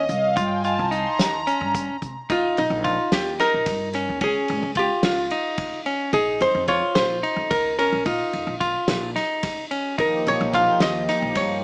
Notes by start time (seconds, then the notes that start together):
Already playing: D#5
0.09 C2 F5, closed hi-hat
0.36 G2 F4 G5, kick, closed hi-hat
0.51 G#5
0.64 F4 A5, closed hi-hat
0.78 C2 A#5
0.91 D#4 C6, closed hi-hat
1.06 A#5
1.19 D#2, snare, closed hi-hat
1.47 C#4, closed hi-hat
1.61 G2
1.74 kick, closed hi-hat
2.02 C3, kick, closed hi-hat
2.30 D#2 D#4 F4, kick, ride
2.57 A#1 D#4, ride
2.70 A#1
2.84 F4, kick, ride
3.12 D#2 G4, snare, ride
3.39 D#4 A#4, snare, ride
3.54 A#1
3.66 G2, kick, snare, ride
3.93 C#4, snare, ride
4.09 D#2
4.21 C#2 C#4 G#4, kick, ride
4.48 G#1, ride
4.63 C#2
4.75 F4 G4, kick, ride
5.03 C#2 F4, snare, ride
5.30 D#4, ride
5.58 kick, ride
5.86 C#4, ride
6.13 A#1 D#4 G#4, kick, ride
6.40 F2 C5, ride
6.55 F2
6.68 F4 C#5, kick, ride
6.95 A#1 C5, snare, ride
7.23 D#4, ride
7.36 F2
7.51 C#2 A#4, kick, ride
7.79 C#4 A#4, ride
7.92 A#1
8.06 A#2 D#4 F4, kick, ride
8.33 F2, ride
8.47 A#1
8.60 F4, kick, ride
8.88 A#1, snare, ride
9.16 D#4, snare, ride
9.43 kick, snare, ride
9.71 C#4, ride
9.98 D#2 F3 A#3 D#4 G4 A#4, kick, ride
10.26 A#1 C#5, ride
10.41 A#1
10.53 F4 F5, kick, ride
10.80 D#2 D#5, snare, ride
11.09 D#4, snare, ride
11.22 A#1
11.35 G2 C#5, kick, snare, ride